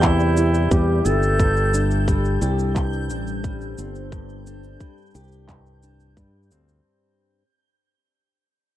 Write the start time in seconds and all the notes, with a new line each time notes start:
Already playing: E2 G3 B3 E4 G4 D5 E5 G6
0.03 C3 E4, kick, clap, cabasa
0.20 cabasa
0.37 E4, cabasa
0.54 cabasa
0.71 E2 G3 G4, kick, cabasa
1.05 G1 B3 A4, cabasa
1.23 cabasa
1.40 G2 G3, kick, cabasa
1.57 cabasa
1.74 D4, cabasa
1.91 cabasa
2.03 C5
2.08 G3, kick, cabasa
2.25 cabasa
2.42 C2 G4, cabasa
2.46 A4
2.59 cabasa
2.76 G2, kick, clap, cabasa
2.93 cabasa
3.10 A1 D4, cabasa
3.27 cabasa
3.44 G3, kick, cabasa
3.61 cabasa
3.78 G1 C4, cabasa
3.95 cabasa
4.12 G2, kick, cabasa
4.29 cabasa
4.47 D4, cabasa
4.64 cabasa
4.80 G3, kick, cabasa
4.98 cabasa
5.02 cabasa
5.06 cabasa
5.11 cabasa
5.15 C2 G4, cabasa
5.24 cabasa
5.28 cabasa
5.32 cabasa
5.49 G2, kick, clap, cabasa
5.66 cabasa
5.83 D4, cabasa
6.00 cabasa
6.17 G2 G3, kick, cabasa
6.43 cabasa
6.51 D2 C4, cabasa
6.68 cabasa